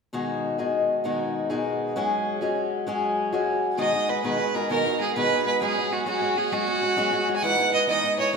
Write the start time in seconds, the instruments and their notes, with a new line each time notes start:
0.13 steel-string acoustic guitar B2 D#3 G#3 D#4 F#4 G#4
0.58 steel-string acoustic guitar B2 D#3 G#3 D#4 F#4 G#4
1.04 steel-string acoustic guitar B2 D#3 G#3 D#4 F#4 G#4
1.50 steel-string acoustic guitar B2 D#3 G#3 D#4 F#4 G#4
1.96 steel-string acoustic guitar F#3 G#3 C#4 F#4 G#4
2.41 steel-string acoustic guitar F#3 G#3 C#4 F#4 G#4
2.87 steel-string acoustic guitar F#3 G#3 C#4 F#4 G#4
3.32 steel-string acoustic guitar F#3 G#3 C#4 F#4 G#4
3.77 steel-string acoustic guitar B2 D#3 G#3 D#4 F#4 G#4, fiddle D#5
3.93 steel-string acoustic guitar G#3 D#4 F#4 G#4
4.08 steel-string acoustic guitar G#3 D#4 F#4 G#4, fiddle B4
4.24 steel-string acoustic guitar B2 D#3 G#3 D#4 F#4 G#4, fiddle B4
4.38 steel-string acoustic guitar G#3 D#4 F#4 G#4
4.54 steel-string acoustic guitar G#3 D#4 F#4 G#4, fiddle A#4
4.69 steel-string acoustic guitar B2 D#3 G#3 D#4 F#4 G#4, fiddle A#4
4.85 steel-string acoustic guitar G#3 D#4 F#4 G#4
5.00 steel-string acoustic guitar G#3 D#4 F#4 G#4, fiddle G#4
5.15 steel-string acoustic guitar B2 D#3 G#3 D#4 F#4 G#4, fiddle B4
5.30 steel-string acoustic guitar G#3 D#4 F#4 G#4
5.45 steel-string acoustic guitar G#3 D#4 F#4 G#4, fiddle B4
5.61 steel-string acoustic guitar F#3 G#3 C#4 F#4 G#4, fiddle G#4
5.76 steel-string acoustic guitar G#3 C#4 F#4 G#4
5.91 steel-string acoustic guitar G#3 C#4 F#4 G#4, fiddle F#4
6.06 steel-string acoustic guitar F#3 G#3 C#4 F#4 G#4, fiddle F#4
6.21 steel-string acoustic guitar G#3 C#4 F#4 G#4
6.36 steel-string acoustic guitar G#3 C#4 F#4 G#4, fiddle G#4
6.52 steel-string acoustic guitar F#3 G#3 C#4 F#4 G#4, fiddle F#4
6.66 steel-string acoustic guitar G#3 C#4 F#4 G#4
6.81 steel-string acoustic guitar G#3 C#4 F#4 G#4
6.96 steel-string acoustic guitar F#3 G#3 C#4 F#4 G#4
7.12 steel-string acoustic guitar G#3 C#4 F#4 G#4
7.27 steel-string acoustic guitar G#3 C#4 F#4 G#4
7.36 fiddle G#5
7.42 steel-string acoustic guitar E3 G#3 D#4 E4 B4, fiddle F#5
7.57 steel-string acoustic guitar G#3 D#4 E4 B4
7.72 steel-string acoustic guitar G#3 D#4 E4 B4, fiddle D#5
7.87 steel-string acoustic guitar E3 G#3 D#4 E4 B4, fiddle D#5
8.03 steel-string acoustic guitar G#3 D#4 E4 B4
8.18 steel-string acoustic guitar G#3 D#4 E4 B4, fiddle C#5
8.33 steel-string acoustic guitar E3 G#3